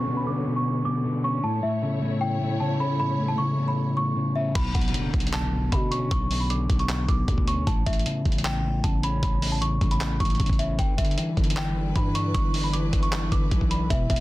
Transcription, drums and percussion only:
4.55 kick, closed hi-hat, crash
4.75 kick, closed hi-hat
4.81 closed hi-hat
4.88 closed hi-hat
4.94 closed hi-hat
5.14 kick, closed hi-hat
5.20 closed hi-hat
5.27 closed hi-hat
5.33 clap, closed hi-hat
5.72 kick, closed hi-hat
5.92 closed hi-hat
6.11 kick, closed hi-hat
6.31 open hi-hat
6.50 closed hi-hat
6.70 kick, closed hi-hat
6.79 closed hi-hat
6.89 clap, closed hi-hat
7.08 kick, closed hi-hat
7.28 kick, closed hi-hat
7.38 kick
7.48 closed hi-hat
7.67 kick, closed hi-hat
7.86 kick, closed hi-hat
7.93 closed hi-hat
7.99 closed hi-hat
8.06 closed hi-hat
8.25 kick, closed hi-hat
8.32 closed hi-hat
8.38 closed hi-hat
8.45 clap, closed hi-hat
8.84 kick, closed hi-hat
9.03 closed hi-hat
9.23 kick, closed hi-hat
9.42 open hi-hat
9.62 closed hi-hat
9.81 kick, closed hi-hat
9.91 closed hi-hat
10.01 clap, closed hi-hat
10.20 kick, closed hi-hat
10.25 closed hi-hat
10.30 closed hi-hat
10.35 closed hi-hat
10.40 kick, closed hi-hat
10.46 kick, closed hi-hat
10.53 closed hi-hat
10.59 closed hi-hat
10.79 kick, closed hi-hat
10.98 kick, closed hi-hat
11.05 closed hi-hat
11.11 closed hi-hat
11.18 closed hi-hat
11.37 kick, closed hi-hat
11.44 closed hi-hat
11.50 closed hi-hat
11.57 clap, closed hi-hat
11.96 kick, closed hi-hat
12.15 closed hi-hat
12.34 kick, closed hi-hat
12.54 open hi-hat
12.73 closed hi-hat
12.93 kick, closed hi-hat
13.03 closed hi-hat
13.12 clap, closed hi-hat
13.32 kick, closed hi-hat
13.51 kick, closed hi-hat
13.61 kick
13.71 closed hi-hat
13.90 kick, closed hi-hat
14.10 kick, closed hi-hat
14.16 closed hi-hat

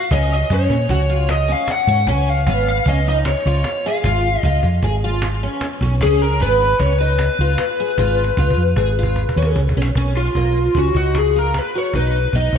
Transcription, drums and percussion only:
0.11 cajon bass
0.31 cajon slap
0.50 cajon bass
0.70 cajon bass, cajon slap
0.89 cajon bass
1.09 cajon slap
1.29 cajon slap
1.48 cajon slap
1.68 cajon slap
1.87 cajon bass
2.07 cajon bass
2.27 cajon slap
2.47 cajon bass
2.67 cajon slap
2.86 cajon bass, cajon slap
3.06 cajon slap
3.25 cajon slap
3.45 cajon slap
3.64 cajon slap
3.85 cajon slap
4.04 cajon bass
4.24 cajon slap
4.43 cajon bass, cajon slap
4.63 cajon bass
4.83 cajon bass, cajon slap
5.02 cajon slap
5.22 cajon slap
5.42 cajon slap
5.61 cajon slap
5.81 cajon bass
6.01 cajon bass
6.21 cajon slap
6.40 cajon bass, cajon slap
6.60 cajon slap
6.80 cajon bass
7.00 cajon slap
7.19 cajon slap
7.39 cajon slap
7.58 cajon slap
7.79 cajon slap
7.98 cajon bass, cajon slap
8.18 cajon slap
8.24 cajon slap
8.37 cajon bass
8.50 cajon bass
8.76 cajon bass, cajon slap
8.97 cajon slap
9.03 cajon bass
9.16 cajon bass, cajon slap
9.29 cajon bass
9.36 cajon slap
9.42 cajon slap
9.56 cajon bass
9.69 cajon bass
9.75 cajon slap
9.82 cajon slap
9.95 cajon bass
10.15 cajon slap
10.35 cajon bass
10.55 cajon slap
10.75 cajon bass
10.95 cajon bass
11.15 cajon slap
11.35 cajon slap
11.54 cajon slap
11.74 cajon slap
11.94 cajon bass
12.14 cajon slap
12.33 cajon bass
12.53 cajon bass

